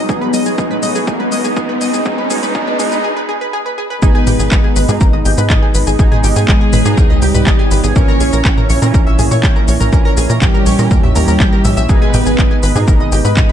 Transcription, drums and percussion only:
0.09 kick, mid tom, shaker
0.21 mid tom
0.34 open hi-hat, mid tom, shaker
0.46 mid tom, shaker
0.58 kick, mid tom, shaker
0.71 mid tom
0.83 mid tom, open hi-hat, shaker
0.95 mid tom, shaker
1.07 kick, mid tom, shaker
1.20 mid tom
1.32 open hi-hat, mid tom, shaker
1.44 mid tom, shaker
1.57 kick, mid tom, shaker
1.69 mid tom
1.81 open hi-hat, mid tom, shaker
1.94 mid tom, shaker
2.06 kick, mid tom, shaker
2.12 mid tom
2.18 mid tom
2.24 mid tom
2.30 open hi-hat, mid tom, shaker
2.37 mid tom
2.43 mid tom, shaker
2.49 mid tom
2.55 kick, mid tom, shaker
2.61 mid tom
2.67 mid tom
2.73 mid tom
2.79 mid tom, open hi-hat, shaker
2.86 mid tom
2.92 mid tom, shaker
2.98 mid tom
4.02 kick, shaker
4.27 mid tom, open hi-hat, shaker
4.39 shaker
4.52 kick, clap, shaker
4.76 open hi-hat, shaker
4.89 mid tom, shaker
5.01 kick, shaker
5.25 open hi-hat, shaker
5.38 shaker
5.50 kick, clap, mid tom, shaker
5.75 open hi-hat, shaker
5.87 shaker
5.99 kick, shaker
6.12 mid tom
6.24 open hi-hat, shaker
6.36 shaker
6.48 kick, clap, shaker
6.73 mid tom, open hi-hat, shaker
6.85 shaker
6.98 kick, shaker
7.22 open hi-hat, shaker
7.35 mid tom, shaker
7.47 kick, clap, shaker
7.71 open hi-hat, shaker
7.84 shaker
7.96 kick, mid tom, shaker
8.20 open hi-hat, shaker
8.33 shaker
8.45 kick, clap, shaker
8.58 mid tom
8.70 open hi-hat, shaker
8.82 shaker
8.94 kick, shaker
9.19 mid tom, open hi-hat, shaker
9.31 shaker
9.43 kick, clap, shaker
9.68 open hi-hat, shaker
9.81 mid tom, shaker
9.93 kick, shaker
10.17 open hi-hat, shaker
10.30 shaker
10.42 kick, clap, mid tom, shaker
10.66 open hi-hat, shaker
10.79 shaker
10.91 kick, shaker
11.03 mid tom
11.16 open hi-hat, shaker
11.28 shaker
11.40 kick, clap, shaker
11.65 mid tom, open hi-hat, shaker
11.77 shaker
11.89 kick, shaker
12.14 mid tom, open hi-hat, shaker
12.26 shaker
12.38 kick, clap, shaker
12.63 open hi-hat, shaker
12.76 mid tom, shaker
12.88 kick, shaker
13.12 open hi-hat, shaker
13.25 shaker
13.37 kick, clap, mid tom, shaker

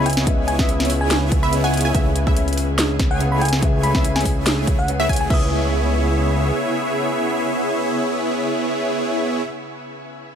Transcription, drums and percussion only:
0.06 closed hi-hat
0.10 closed hi-hat
0.13 closed hi-hat
0.17 snare
0.27 kick, closed hi-hat
0.48 closed hi-hat
0.59 kick, snare
0.69 closed hi-hat
0.80 snare, closed hi-hat
0.85 closed hi-hat
0.90 open hi-hat
1.11 snare, closed hi-hat
1.32 kick, closed hi-hat
1.53 closed hi-hat
1.74 closed hi-hat
1.77 closed hi-hat
1.81 closed hi-hat
1.95 kick, closed hi-hat
2.16 closed hi-hat
2.27 kick
2.37 closed hi-hat
2.48 closed hi-hat
2.53 closed hi-hat
2.58 open hi-hat
2.79 snare, closed hi-hat
3.00 kick, snare, closed hi-hat
3.21 closed hi-hat
3.41 closed hi-hat
3.45 closed hi-hat
3.49 closed hi-hat
3.53 snare
3.62 kick, closed hi-hat
3.83 closed hi-hat
3.95 kick, snare
4.05 closed hi-hat
4.16 snare, closed hi-hat
4.21 closed hi-hat
4.25 kick, open hi-hat
4.46 snare, closed hi-hat
4.67 kick, closed hi-hat
4.88 closed hi-hat
5.09 kick, closed hi-hat
5.13 closed hi-hat
5.16 closed hi-hat
5.30 kick, crash

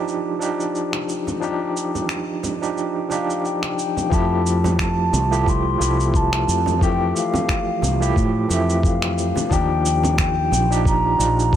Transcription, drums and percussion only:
0.08 shaker
0.41 shaker
0.60 shaker
0.75 shaker
0.93 finger snap, high conga
1.09 shaker
1.27 low conga, shaker
1.42 shaker
1.76 shaker
1.95 low conga, shaker
2.09 finger snap, shaker
2.43 low conga, shaker
2.63 shaker
2.78 shaker
3.10 high conga, shaker
3.30 shaker
3.45 shaker
3.63 finger snap, high conga
3.79 shaker
3.97 high conga, low conga, shaker
4.12 kick, shaker
4.46 shaker
4.64 low conga, shaker
4.79 finger snap, kick, shaker
5.13 low conga, shaker
5.33 shaker
5.46 kick, shaker
5.81 shaker
6.00 shaker
6.14 kick, shaker
6.33 finger snap, high conga
6.49 shaker
6.66 low conga, shaker
6.81 kick, shaker
7.16 shaker
7.33 low conga, shaker
7.49 finger snap, kick, shaker
7.82 low conga, shaker
8.02 shaker
8.16 kick, shaker
8.49 high conga, shaker
8.70 shaker
8.83 kick, shaker
9.02 finger snap, high conga
9.18 shaker
9.36 high conga, low conga, shaker
9.51 kick, shaker
9.85 shaker
10.03 low conga, shaker
10.18 finger snap, kick, shaker
10.52 low conga, shaker
10.72 shaker
10.85 kick, shaker
11.20 shaker
11.39 shaker
11.53 kick

